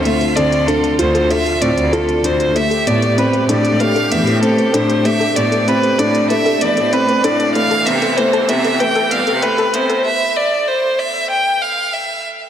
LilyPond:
<<
  \new Staff \with { instrumentName = "Violin" } { \time 4/4 \key c \major \tempo 4 = 96 e''8 d''8 a'8 c''8 e''8 d''8 a'8 c''8 | e''8 d''8 b'8 d''8 f''8 e''8 a'8 c''8 | e''8 d''8 b'8 d''8 e''8 d''8 b'8 d''8 | f''8 e''8 c''8 e''8 g''8 f''8 b'8 c''8 |
e''8 d''8 c''8 e''8 g''8 f''8 e''8 r8 | }
  \new Staff \with { instrumentName = "Synth arpeggio sound" } { \time 4/4 \key c \major r16 c''16 a'16 r16 a'16 r16 c''16 a'16 r16 a'16 r16 c''16 a'16 r16 a'16 r16 | b'16 a'16 r16 a'16 r16 b'16 a'16 r16 b'16 a'16 r16 a'16 r16 b'16 a'16 r16 | b'16 a'16 r16 a'16 r16 b'16 a'16 r16 b'16 a'16 r16 a'16 r16 b'16 a'16 r16 | b'16 a'16 r16 a'16 b'16 a'16 r16 a'16 b'16 a'16 r16 a'16 b'16 a'16 r16 a'16 |
r1 | }
  \new Staff \with { instrumentName = "Felt piano" } { \time 4/4 \key c \major a8 c'8 d'8 f'8 a'8 c'8 f'8 d'8 | a8 b8 c'8 d'8 a8 b8 c'8 d'8 | a8 b8 c'8 d'8 a8 b8 c'8 d'8 | a8 b8 a8 b8 a8 b8 a8 b8 |
r1 | }
  \new Staff \with { instrumentName = "String section" } { \clef bass \time 4/4 \key c \major <d f'>1 | <a g'>1~ | <a g'>1 | <b, c e>1 |
r1 | }
  \new Staff \with { instrumentName = "Cello section" } { \clef bass \time 4/4 \key c \major r8 d,8 r8 d,8 r8 a,16 d,8 r16 d,8 | r8 a,8 r8 a,8 r8 e,16 a,8 r16 a,8 | r8 a,8 r8 a,8 r8 e,16 a,8 r16 a,8 | r8 c8 r8 c8 r8 g,16 c8 r16 c8 |
r1 | }
  \new DrumStaff \with { instrumentName = "Drums" } \drummode { \time 4/4 hh16 hh16 hh16 hh16 hh16 hh16 hh16 hh16 hh16 hh16 hh16 hh16 hh16 hh16 hh16 hh16 | hh16 hh16 hh16 hh16 hh16 hh16 hh16 hh16 hh16 hh16 hh16 hh16 hh16 hh16 hh16 hh16 | hh16 hh16 hh16 hh16 hh16 hh16 hh16 hh16 hh16 hh16 hh16 hh16 hh16 hh16 hh16 hh16 | hh16 hh16 hh16 hh16 hh16 hh16 hh16 hh16 hh16 hh16 hh16 hh16 hh16 hh16 hh16 hh16 |
r4 r4 r4 r4 | }
>>